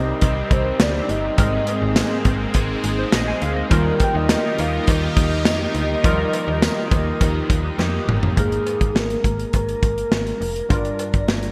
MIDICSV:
0, 0, Header, 1, 8, 480
1, 0, Start_track
1, 0, Tempo, 582524
1, 1139, Time_signature, 4, 2, 24, 8
1, 9491, End_track
2, 0, Start_track
2, 0, Title_t, "Soft synth lead"
2, 0, Program_c, 0, 80
2, 0, Note_on_c, 0, 75, 109
2, 433, Note_on_c, 0, 72, 95
2, 445, Note_off_c, 0, 75, 0
2, 666, Note_off_c, 0, 72, 0
2, 674, Note_on_c, 0, 74, 98
2, 907, Note_on_c, 0, 75, 111
2, 919, Note_off_c, 0, 74, 0
2, 1863, Note_off_c, 0, 75, 0
2, 3314, Note_on_c, 0, 79, 103
2, 3432, Note_on_c, 0, 75, 104
2, 3444, Note_off_c, 0, 79, 0
2, 3793, Note_on_c, 0, 77, 93
2, 3805, Note_off_c, 0, 75, 0
2, 4026, Note_off_c, 0, 77, 0
2, 4034, Note_on_c, 0, 75, 103
2, 6394, Note_off_c, 0, 75, 0
2, 6909, Note_on_c, 0, 68, 93
2, 7391, Note_on_c, 0, 70, 86
2, 7403, Note_off_c, 0, 68, 0
2, 7625, Note_off_c, 0, 70, 0
2, 7632, Note_on_c, 0, 70, 84
2, 7849, Note_off_c, 0, 70, 0
2, 7870, Note_on_c, 0, 70, 106
2, 8828, Note_on_c, 0, 74, 111
2, 8840, Note_off_c, 0, 70, 0
2, 9303, Note_off_c, 0, 74, 0
2, 9491, End_track
3, 0, Start_track
3, 0, Title_t, "Analog polysynth"
3, 0, Program_c, 1, 90
3, 0, Note_on_c, 1, 63, 82
3, 0, Note_on_c, 1, 67, 77
3, 0, Note_on_c, 1, 70, 92
3, 1105, Note_off_c, 1, 70, 0
3, 1106, Note_off_c, 1, 63, 0
3, 1106, Note_off_c, 1, 67, 0
3, 1138, Note_on_c, 1, 60, 79
3, 1138, Note_on_c, 1, 68, 90
3, 1140, Note_on_c, 1, 63, 81
3, 3025, Note_off_c, 1, 60, 0
3, 3025, Note_off_c, 1, 68, 0
3, 3026, Note_off_c, 1, 63, 0
3, 3058, Note_on_c, 1, 58, 79
3, 3059, Note_on_c, 1, 63, 81
3, 3059, Note_on_c, 1, 67, 88
3, 6865, Note_off_c, 1, 58, 0
3, 6866, Note_off_c, 1, 63, 0
3, 6866, Note_off_c, 1, 67, 0
3, 9491, End_track
4, 0, Start_track
4, 0, Title_t, "Synth keys"
4, 0, Program_c, 2, 88
4, 0, Control_c, 2, 64, 127
4, 0, Note_on_c, 2, 48, 76
4, 0, Note_on_c, 2, 55, 79
4, 0, Note_on_c, 2, 60, 70
4, 0, Note_on_c, 2, 63, 71
4, 0, Note_on_c, 2, 72, 85
4, 1102, Note_off_c, 2, 55, 0
4, 1104, Note_off_c, 2, 60, 0
4, 1108, Note_off_c, 2, 63, 0
4, 1111, Note_off_c, 2, 72, 0
4, 1132, Note_on_c, 2, 56, 66
4, 1139, Note_on_c, 2, 60, 60
4, 1143, Note_on_c, 2, 44, 68
4, 1147, Note_on_c, 2, 63, 59
4, 1149, Note_off_c, 2, 48, 0
4, 1149, Control_c, 2, 64, 0
4, 1152, Note_on_c, 2, 70, 70
4, 1296, Control_c, 2, 64, 127
4, 1828, Note_off_c, 2, 44, 0
4, 2311, Note_off_c, 2, 56, 0
4, 2315, Note_off_c, 2, 60, 0
4, 2319, Note_off_c, 2, 63, 0
4, 2322, Note_off_c, 2, 70, 0
4, 2461, Note_on_c, 2, 72, 62
4, 2574, Note_off_c, 2, 72, 0
4, 2578, Note_on_c, 2, 75, 71
4, 2692, Note_off_c, 2, 75, 0
4, 2699, Note_on_c, 2, 80, 73
4, 2813, Note_off_c, 2, 80, 0
4, 2819, Note_on_c, 2, 77, 71
4, 2933, Note_off_c, 2, 77, 0
4, 2936, Note_on_c, 2, 75, 61
4, 3047, Note_on_c, 2, 55, 80
4, 3055, Note_on_c, 2, 63, 74
4, 3058, Note_on_c, 2, 51, 78
4, 3061, Note_on_c, 2, 65, 74
4, 3068, Note_on_c, 2, 70, 91
4, 3070, Control_c, 2, 64, 0
4, 3165, Note_off_c, 2, 75, 0
4, 3207, Control_c, 2, 64, 127
4, 3745, Note_off_c, 2, 51, 0
4, 4940, Note_off_c, 2, 55, 0
4, 4944, Note_off_c, 2, 63, 0
4, 4947, Note_off_c, 2, 65, 0
4, 4950, Note_off_c, 2, 70, 0
4, 4971, Note_on_c, 2, 53, 64
4, 4976, Note_on_c, 2, 63, 73
4, 4978, Note_on_c, 2, 51, 74
4, 4984, Note_on_c, 2, 65, 76
4, 4990, Note_on_c, 2, 70, 87
4, 5024, Note_on_c, 2, 55, 75
4, 5028, Note_off_c, 2, 53, 0
4, 5666, Note_off_c, 2, 51, 0
4, 6864, Note_off_c, 2, 63, 0
4, 6868, Note_off_c, 2, 65, 0
4, 6871, Note_off_c, 2, 70, 0
4, 6888, Note_off_c, 2, 55, 0
4, 6888, Note_on_c, 2, 56, 62
4, 6895, Note_on_c, 2, 58, 55
4, 6898, Note_on_c, 2, 44, 58
4, 6901, Note_on_c, 2, 63, 54
4, 6907, Note_on_c, 2, 70, 63
4, 6908, Control_c, 2, 64, 0
4, 7055, Control_c, 2, 64, 127
4, 7586, Note_off_c, 2, 44, 0
4, 8780, Note_off_c, 2, 56, 0
4, 8784, Note_off_c, 2, 58, 0
4, 8787, Note_off_c, 2, 63, 0
4, 8790, Note_off_c, 2, 70, 0
4, 8807, Note_on_c, 2, 55, 59
4, 8814, Note_on_c, 2, 62, 56
4, 8816, Note_on_c, 2, 43, 59
4, 8821, Note_on_c, 2, 65, 58
4, 8827, Note_on_c, 2, 70, 66
4, 8828, Control_c, 2, 64, 0
4, 8984, Control_c, 2, 64, 127
4, 9491, Note_off_c, 2, 43, 0
4, 9491, Note_off_c, 2, 55, 0
4, 9491, Note_off_c, 2, 62, 0
4, 9491, Note_off_c, 2, 65, 0
4, 9491, Note_off_c, 2, 70, 0
4, 9491, End_track
5, 0, Start_track
5, 0, Title_t, "Analog synth pad"
5, 0, Program_c, 3, 89
5, 0, Note_on_c, 3, 48, 81
5, 0, Note_on_c, 3, 60, 72
5, 0, Note_on_c, 3, 63, 72
5, 0, Note_on_c, 3, 67, 74
5, 1107, Note_off_c, 3, 63, 0
5, 1110, Note_off_c, 3, 67, 0
5, 1120, Note_off_c, 3, 48, 0
5, 1124, Note_off_c, 3, 60, 0
5, 1153, Note_on_c, 3, 56, 78
5, 1157, Note_on_c, 3, 60, 92
5, 1158, Note_on_c, 3, 58, 73
5, 3047, Note_off_c, 3, 56, 0
5, 3049, Note_off_c, 3, 58, 0
5, 3049, Note_off_c, 3, 60, 0
5, 3057, Note_on_c, 3, 65, 75
5, 3059, Note_on_c, 3, 51, 85
5, 3061, Note_on_c, 3, 63, 79
5, 3061, Note_on_c, 3, 67, 77
5, 3062, Note_on_c, 3, 70, 93
5, 6865, Note_off_c, 3, 65, 0
5, 6866, Note_off_c, 3, 51, 0
5, 6867, Note_off_c, 3, 63, 0
5, 6867, Note_off_c, 3, 67, 0
5, 6867, Note_off_c, 3, 70, 0
5, 9491, End_track
6, 0, Start_track
6, 0, Title_t, "Overdriven electric guitar"
6, 0, Program_c, 4, 29
6, 0, Note_on_c, 4, 48, 95
6, 0, Note_on_c, 4, 55, 99
6, 0, Note_on_c, 4, 60, 105
6, 0, Note_on_c, 4, 63, 73
6, 172, Note_off_c, 4, 48, 0
6, 179, Note_off_c, 4, 55, 0
6, 181, Note_on_c, 4, 48, 60
6, 188, Note_on_c, 4, 55, 70
6, 195, Note_off_c, 4, 60, 0
6, 198, Note_on_c, 4, 60, 68
6, 646, Note_off_c, 4, 48, 0
6, 655, Note_off_c, 4, 55, 0
6, 656, Note_on_c, 4, 48, 65
6, 664, Note_on_c, 4, 55, 60
6, 669, Note_off_c, 4, 60, 0
6, 672, Note_on_c, 4, 60, 72
6, 1134, Note_off_c, 4, 55, 0
6, 1137, Note_off_c, 4, 48, 0
6, 1137, Note_on_c, 4, 56, 86
6, 1139, Note_off_c, 4, 60, 0
6, 1142, Note_off_c, 4, 63, 0
6, 1142, Note_on_c, 4, 63, 90
6, 1151, Note_on_c, 4, 68, 90
6, 1604, Note_off_c, 4, 56, 0
6, 1614, Note_on_c, 4, 56, 68
6, 1621, Note_off_c, 4, 63, 0
6, 1622, Note_off_c, 4, 68, 0
6, 1624, Note_on_c, 4, 63, 68
6, 1632, Note_on_c, 4, 68, 66
6, 2087, Note_off_c, 4, 56, 0
6, 2096, Note_on_c, 4, 56, 75
6, 2105, Note_off_c, 4, 68, 0
6, 2106, Note_off_c, 4, 63, 0
6, 2109, Note_on_c, 4, 63, 76
6, 2117, Note_on_c, 4, 68, 81
6, 2566, Note_off_c, 4, 56, 0
6, 2576, Note_on_c, 4, 56, 71
6, 2584, Note_off_c, 4, 63, 0
6, 2586, Note_off_c, 4, 68, 0
6, 2587, Note_on_c, 4, 63, 73
6, 2595, Note_on_c, 4, 68, 79
6, 3052, Note_on_c, 4, 51, 100
6, 3057, Note_off_c, 4, 56, 0
6, 3063, Note_off_c, 4, 63, 0
6, 3063, Note_on_c, 4, 58, 104
6, 3067, Note_off_c, 4, 68, 0
6, 3067, Note_on_c, 4, 63, 103
6, 3533, Note_off_c, 4, 51, 0
6, 3536, Note_on_c, 4, 51, 54
6, 3542, Note_off_c, 4, 58, 0
6, 3546, Note_on_c, 4, 58, 60
6, 3552, Note_off_c, 4, 63, 0
6, 3555, Note_on_c, 4, 63, 66
6, 4007, Note_off_c, 4, 51, 0
6, 4010, Note_on_c, 4, 51, 66
6, 4016, Note_off_c, 4, 58, 0
6, 4020, Note_on_c, 4, 58, 67
6, 4026, Note_off_c, 4, 63, 0
6, 4030, Note_on_c, 4, 63, 66
6, 4489, Note_off_c, 4, 51, 0
6, 4492, Note_on_c, 4, 51, 61
6, 4502, Note_off_c, 4, 58, 0
6, 4505, Note_on_c, 4, 58, 66
6, 4507, Note_off_c, 4, 63, 0
6, 4510, Note_on_c, 4, 63, 66
6, 4976, Note_off_c, 4, 51, 0
6, 4980, Note_on_c, 4, 51, 90
6, 4983, Note_off_c, 4, 58, 0
6, 4986, Note_on_c, 4, 58, 97
6, 4987, Note_off_c, 4, 63, 0
6, 4991, Note_on_c, 4, 63, 112
6, 5451, Note_off_c, 4, 51, 0
6, 5455, Note_on_c, 4, 51, 65
6, 5464, Note_off_c, 4, 58, 0
6, 5467, Note_on_c, 4, 58, 60
6, 5470, Note_off_c, 4, 63, 0
6, 5473, Note_on_c, 4, 63, 64
6, 5930, Note_off_c, 4, 51, 0
6, 5934, Note_on_c, 4, 51, 69
6, 5940, Note_off_c, 4, 58, 0
6, 5943, Note_on_c, 4, 58, 76
6, 5948, Note_off_c, 4, 63, 0
6, 5951, Note_on_c, 4, 63, 88
6, 6414, Note_off_c, 4, 51, 0
6, 6418, Note_on_c, 4, 51, 67
6, 6426, Note_off_c, 4, 58, 0
6, 6430, Note_on_c, 4, 58, 72
6, 6431, Note_off_c, 4, 63, 0
6, 6435, Note_on_c, 4, 63, 81
6, 7319, Note_off_c, 4, 51, 0
6, 7319, Note_off_c, 4, 58, 0
6, 7319, Note_off_c, 4, 63, 0
6, 9491, End_track
7, 0, Start_track
7, 0, Title_t, "FM bass"
7, 0, Program_c, 5, 39
7, 0, Note_on_c, 5, 36, 113
7, 113, Note_off_c, 5, 36, 0
7, 180, Note_on_c, 5, 36, 102
7, 353, Note_off_c, 5, 36, 0
7, 419, Note_on_c, 5, 36, 107
7, 591, Note_off_c, 5, 36, 0
7, 657, Note_on_c, 5, 38, 87
7, 830, Note_off_c, 5, 38, 0
7, 901, Note_on_c, 5, 31, 86
7, 1073, Note_off_c, 5, 31, 0
7, 1139, Note_on_c, 5, 32, 108
7, 1312, Note_off_c, 5, 32, 0
7, 1499, Note_on_c, 5, 32, 96
7, 1672, Note_off_c, 5, 32, 0
7, 1856, Note_on_c, 5, 32, 102
7, 2030, Note_off_c, 5, 32, 0
7, 2097, Note_on_c, 5, 32, 99
7, 2270, Note_off_c, 5, 32, 0
7, 2341, Note_on_c, 5, 32, 100
7, 2513, Note_off_c, 5, 32, 0
7, 2577, Note_on_c, 5, 34, 89
7, 2751, Note_off_c, 5, 34, 0
7, 2820, Note_on_c, 5, 38, 85
7, 2992, Note_off_c, 5, 38, 0
7, 3057, Note_on_c, 5, 39, 104
7, 3230, Note_off_c, 5, 39, 0
7, 3419, Note_on_c, 5, 39, 94
7, 3591, Note_off_c, 5, 39, 0
7, 3781, Note_on_c, 5, 39, 106
7, 3953, Note_off_c, 5, 39, 0
7, 4020, Note_on_c, 5, 39, 106
7, 4193, Note_off_c, 5, 39, 0
7, 4256, Note_on_c, 5, 39, 100
7, 4498, Note_on_c, 5, 41, 89
7, 4510, Note_off_c, 5, 39, 0
7, 4671, Note_off_c, 5, 41, 0
7, 4735, Note_on_c, 5, 38, 88
7, 4909, Note_off_c, 5, 38, 0
7, 4979, Note_on_c, 5, 39, 105
7, 5152, Note_off_c, 5, 39, 0
7, 5337, Note_on_c, 5, 39, 98
7, 5511, Note_off_c, 5, 39, 0
7, 5696, Note_on_c, 5, 39, 109
7, 5870, Note_off_c, 5, 39, 0
7, 5940, Note_on_c, 5, 39, 104
7, 6112, Note_off_c, 5, 39, 0
7, 6178, Note_on_c, 5, 39, 95
7, 6351, Note_off_c, 5, 39, 0
7, 6414, Note_on_c, 5, 41, 93
7, 6588, Note_off_c, 5, 41, 0
7, 6656, Note_on_c, 5, 31, 88
7, 6830, Note_off_c, 5, 31, 0
7, 6900, Note_on_c, 5, 32, 108
7, 7072, Note_off_c, 5, 32, 0
7, 7257, Note_on_c, 5, 32, 94
7, 7344, Note_off_c, 5, 32, 0
7, 7376, Note_on_c, 5, 32, 92
7, 7550, Note_off_c, 5, 32, 0
7, 7615, Note_on_c, 5, 32, 108
7, 7789, Note_off_c, 5, 32, 0
7, 7859, Note_on_c, 5, 32, 108
7, 8032, Note_off_c, 5, 32, 0
7, 8097, Note_on_c, 5, 32, 94
7, 8270, Note_off_c, 5, 32, 0
7, 8337, Note_on_c, 5, 32, 98
7, 8510, Note_off_c, 5, 32, 0
7, 8576, Note_on_c, 5, 29, 89
7, 8750, Note_off_c, 5, 29, 0
7, 8820, Note_on_c, 5, 31, 106
7, 8992, Note_off_c, 5, 31, 0
7, 9178, Note_on_c, 5, 31, 97
7, 9265, Note_off_c, 5, 31, 0
7, 9296, Note_on_c, 5, 31, 94
7, 9470, Note_off_c, 5, 31, 0
7, 9491, End_track
8, 0, Start_track
8, 0, Title_t, "Drums"
8, 177, Note_on_c, 9, 42, 93
8, 182, Note_on_c, 9, 36, 98
8, 183, Note_on_c, 9, 56, 70
8, 259, Note_off_c, 9, 42, 0
8, 264, Note_off_c, 9, 36, 0
8, 266, Note_off_c, 9, 56, 0
8, 419, Note_on_c, 9, 36, 107
8, 420, Note_on_c, 9, 42, 77
8, 501, Note_off_c, 9, 36, 0
8, 503, Note_off_c, 9, 42, 0
8, 656, Note_on_c, 9, 38, 118
8, 657, Note_on_c, 9, 42, 90
8, 661, Note_on_c, 9, 54, 66
8, 665, Note_on_c, 9, 56, 81
8, 739, Note_off_c, 9, 38, 0
8, 739, Note_off_c, 9, 42, 0
8, 743, Note_off_c, 9, 54, 0
8, 747, Note_off_c, 9, 56, 0
8, 900, Note_on_c, 9, 42, 71
8, 983, Note_off_c, 9, 42, 0
8, 1138, Note_on_c, 9, 42, 87
8, 1140, Note_on_c, 9, 36, 108
8, 1145, Note_on_c, 9, 56, 68
8, 1220, Note_off_c, 9, 42, 0
8, 1222, Note_off_c, 9, 36, 0
8, 1227, Note_off_c, 9, 56, 0
8, 1376, Note_on_c, 9, 42, 76
8, 1385, Note_on_c, 9, 56, 65
8, 1458, Note_off_c, 9, 42, 0
8, 1467, Note_off_c, 9, 56, 0
8, 1614, Note_on_c, 9, 38, 108
8, 1615, Note_on_c, 9, 54, 70
8, 1616, Note_on_c, 9, 42, 98
8, 1625, Note_on_c, 9, 56, 70
8, 1696, Note_off_c, 9, 38, 0
8, 1698, Note_off_c, 9, 42, 0
8, 1698, Note_off_c, 9, 54, 0
8, 1707, Note_off_c, 9, 56, 0
8, 1853, Note_on_c, 9, 42, 73
8, 1856, Note_on_c, 9, 36, 100
8, 1866, Note_on_c, 9, 56, 68
8, 1936, Note_off_c, 9, 42, 0
8, 1938, Note_off_c, 9, 36, 0
8, 1949, Note_off_c, 9, 56, 0
8, 2092, Note_on_c, 9, 42, 94
8, 2099, Note_on_c, 9, 36, 91
8, 2105, Note_on_c, 9, 56, 71
8, 2175, Note_off_c, 9, 42, 0
8, 2181, Note_off_c, 9, 36, 0
8, 2188, Note_off_c, 9, 56, 0
8, 2338, Note_on_c, 9, 42, 79
8, 2421, Note_off_c, 9, 42, 0
8, 2574, Note_on_c, 9, 38, 118
8, 2575, Note_on_c, 9, 42, 91
8, 2578, Note_on_c, 9, 54, 64
8, 2584, Note_on_c, 9, 56, 81
8, 2657, Note_off_c, 9, 38, 0
8, 2657, Note_off_c, 9, 42, 0
8, 2661, Note_off_c, 9, 54, 0
8, 2666, Note_off_c, 9, 56, 0
8, 2815, Note_on_c, 9, 42, 70
8, 2898, Note_off_c, 9, 42, 0
8, 3056, Note_on_c, 9, 42, 85
8, 3058, Note_on_c, 9, 36, 112
8, 3063, Note_on_c, 9, 56, 70
8, 3139, Note_off_c, 9, 42, 0
8, 3141, Note_off_c, 9, 36, 0
8, 3145, Note_off_c, 9, 56, 0
8, 3294, Note_on_c, 9, 42, 77
8, 3297, Note_on_c, 9, 36, 93
8, 3309, Note_on_c, 9, 56, 65
8, 3376, Note_off_c, 9, 42, 0
8, 3380, Note_off_c, 9, 36, 0
8, 3391, Note_off_c, 9, 56, 0
8, 3536, Note_on_c, 9, 38, 110
8, 3538, Note_on_c, 9, 42, 99
8, 3538, Note_on_c, 9, 54, 69
8, 3548, Note_on_c, 9, 56, 70
8, 3619, Note_off_c, 9, 38, 0
8, 3620, Note_off_c, 9, 42, 0
8, 3620, Note_off_c, 9, 54, 0
8, 3630, Note_off_c, 9, 56, 0
8, 3778, Note_on_c, 9, 42, 76
8, 3787, Note_on_c, 9, 56, 69
8, 3860, Note_off_c, 9, 42, 0
8, 3869, Note_off_c, 9, 56, 0
8, 4016, Note_on_c, 9, 42, 93
8, 4020, Note_on_c, 9, 36, 94
8, 4027, Note_on_c, 9, 56, 73
8, 4099, Note_off_c, 9, 42, 0
8, 4103, Note_off_c, 9, 36, 0
8, 4109, Note_off_c, 9, 56, 0
8, 4257, Note_on_c, 9, 42, 81
8, 4258, Note_on_c, 9, 36, 108
8, 4340, Note_off_c, 9, 36, 0
8, 4340, Note_off_c, 9, 42, 0
8, 4494, Note_on_c, 9, 38, 114
8, 4494, Note_on_c, 9, 42, 87
8, 4498, Note_on_c, 9, 54, 66
8, 4505, Note_on_c, 9, 56, 84
8, 4576, Note_off_c, 9, 38, 0
8, 4576, Note_off_c, 9, 42, 0
8, 4580, Note_off_c, 9, 54, 0
8, 4587, Note_off_c, 9, 56, 0
8, 4734, Note_on_c, 9, 42, 71
8, 4817, Note_off_c, 9, 42, 0
8, 4979, Note_on_c, 9, 36, 111
8, 4979, Note_on_c, 9, 42, 89
8, 4981, Note_on_c, 9, 56, 71
8, 5061, Note_off_c, 9, 42, 0
8, 5062, Note_off_c, 9, 36, 0
8, 5064, Note_off_c, 9, 56, 0
8, 5219, Note_on_c, 9, 42, 75
8, 5221, Note_on_c, 9, 56, 63
8, 5301, Note_off_c, 9, 42, 0
8, 5304, Note_off_c, 9, 56, 0
8, 5458, Note_on_c, 9, 38, 109
8, 5458, Note_on_c, 9, 56, 71
8, 5459, Note_on_c, 9, 54, 67
8, 5460, Note_on_c, 9, 42, 88
8, 5540, Note_off_c, 9, 38, 0
8, 5540, Note_off_c, 9, 56, 0
8, 5542, Note_off_c, 9, 42, 0
8, 5542, Note_off_c, 9, 54, 0
8, 5697, Note_on_c, 9, 36, 103
8, 5698, Note_on_c, 9, 56, 67
8, 5699, Note_on_c, 9, 42, 73
8, 5780, Note_off_c, 9, 36, 0
8, 5780, Note_off_c, 9, 56, 0
8, 5782, Note_off_c, 9, 42, 0
8, 5939, Note_on_c, 9, 56, 71
8, 5940, Note_on_c, 9, 42, 92
8, 5941, Note_on_c, 9, 36, 94
8, 6022, Note_off_c, 9, 56, 0
8, 6023, Note_off_c, 9, 36, 0
8, 6023, Note_off_c, 9, 42, 0
8, 6178, Note_on_c, 9, 36, 99
8, 6182, Note_on_c, 9, 42, 79
8, 6261, Note_off_c, 9, 36, 0
8, 6264, Note_off_c, 9, 42, 0
8, 6420, Note_on_c, 9, 56, 76
8, 6423, Note_on_c, 9, 38, 59
8, 6502, Note_off_c, 9, 56, 0
8, 6505, Note_off_c, 9, 38, 0
8, 6663, Note_on_c, 9, 45, 90
8, 6746, Note_off_c, 9, 45, 0
8, 6780, Note_on_c, 9, 43, 97
8, 6863, Note_off_c, 9, 43, 0
8, 6899, Note_on_c, 9, 36, 99
8, 6899, Note_on_c, 9, 56, 60
8, 6900, Note_on_c, 9, 42, 82
8, 6982, Note_off_c, 9, 36, 0
8, 6982, Note_off_c, 9, 42, 0
8, 6982, Note_off_c, 9, 56, 0
8, 7023, Note_on_c, 9, 42, 46
8, 7105, Note_off_c, 9, 42, 0
8, 7141, Note_on_c, 9, 42, 70
8, 7141, Note_on_c, 9, 56, 61
8, 7223, Note_off_c, 9, 42, 0
8, 7223, Note_off_c, 9, 56, 0
8, 7259, Note_on_c, 9, 36, 88
8, 7261, Note_on_c, 9, 42, 51
8, 7342, Note_off_c, 9, 36, 0
8, 7344, Note_off_c, 9, 42, 0
8, 7381, Note_on_c, 9, 38, 104
8, 7384, Note_on_c, 9, 56, 67
8, 7464, Note_off_c, 9, 38, 0
8, 7467, Note_off_c, 9, 56, 0
8, 7500, Note_on_c, 9, 42, 49
8, 7582, Note_off_c, 9, 42, 0
8, 7616, Note_on_c, 9, 36, 96
8, 7619, Note_on_c, 9, 42, 66
8, 7699, Note_off_c, 9, 36, 0
8, 7702, Note_off_c, 9, 42, 0
8, 7741, Note_on_c, 9, 42, 53
8, 7824, Note_off_c, 9, 42, 0
8, 7855, Note_on_c, 9, 42, 85
8, 7859, Note_on_c, 9, 36, 84
8, 7865, Note_on_c, 9, 56, 64
8, 7937, Note_off_c, 9, 42, 0
8, 7941, Note_off_c, 9, 36, 0
8, 7947, Note_off_c, 9, 56, 0
8, 7981, Note_on_c, 9, 42, 48
8, 8064, Note_off_c, 9, 42, 0
8, 8097, Note_on_c, 9, 36, 93
8, 8100, Note_on_c, 9, 42, 71
8, 8180, Note_off_c, 9, 36, 0
8, 8182, Note_off_c, 9, 42, 0
8, 8222, Note_on_c, 9, 42, 51
8, 8304, Note_off_c, 9, 42, 0
8, 8336, Note_on_c, 9, 38, 99
8, 8340, Note_on_c, 9, 56, 74
8, 8419, Note_off_c, 9, 38, 0
8, 8422, Note_off_c, 9, 56, 0
8, 8461, Note_on_c, 9, 42, 51
8, 8543, Note_off_c, 9, 42, 0
8, 8584, Note_on_c, 9, 46, 62
8, 8666, Note_off_c, 9, 46, 0
8, 8701, Note_on_c, 9, 42, 55
8, 8783, Note_off_c, 9, 42, 0
8, 8819, Note_on_c, 9, 36, 101
8, 8819, Note_on_c, 9, 56, 63
8, 8820, Note_on_c, 9, 42, 80
8, 8901, Note_off_c, 9, 56, 0
8, 8902, Note_off_c, 9, 36, 0
8, 8902, Note_off_c, 9, 42, 0
8, 8939, Note_on_c, 9, 42, 45
8, 9022, Note_off_c, 9, 42, 0
8, 9057, Note_on_c, 9, 42, 68
8, 9059, Note_on_c, 9, 56, 60
8, 9139, Note_off_c, 9, 42, 0
8, 9141, Note_off_c, 9, 56, 0
8, 9176, Note_on_c, 9, 42, 53
8, 9178, Note_on_c, 9, 36, 84
8, 9259, Note_off_c, 9, 42, 0
8, 9260, Note_off_c, 9, 36, 0
8, 9297, Note_on_c, 9, 56, 65
8, 9299, Note_on_c, 9, 38, 106
8, 9379, Note_off_c, 9, 56, 0
8, 9381, Note_off_c, 9, 38, 0
8, 9415, Note_on_c, 9, 42, 51
8, 9491, Note_off_c, 9, 42, 0
8, 9491, End_track
0, 0, End_of_file